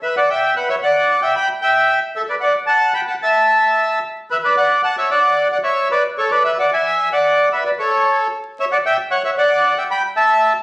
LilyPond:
\new Staff \with { instrumentName = "Bandoneon" } { \time 4/4 \key e \dorian \tempo 4 = 113 <b' e''>16 <d'' fis''>16 <e'' g''>8 <b' fis''>16 <cis'' e''>16 <d'' fis''>8. <e'' g''>16 <g'' b''>8 <e'' g''>8. r16 | <a' e''>16 <b' d''>16 <d'' fis''>8 <fis'' a''>8 <g'' b''>16 <fis'' a''>16 <e'' a''>4. r8 | <b' e''>16 <b' d''>16 <d'' fis''>8 <fis'' a''>16 <cis'' e''>16 <d'' fis''>8. <d'' fis''>16 <cis'' e''>8 <b' d''>8 <a' cis''>16 <b' d''>16 | <b' e''>16 <d'' fis''>16 <e'' gis''>8. <d'' fis''>8. <b' e''>16 <b' d''>16 <a' cis''>4 r8 |
<cis'' e''>16 <d'' fis''>16 <e'' g''>8 <cis'' fis''>16 <cis'' e''>16 <d'' fis''>8. <e'' g''>16 <g'' b''>8 <e'' a''>8. r16 | }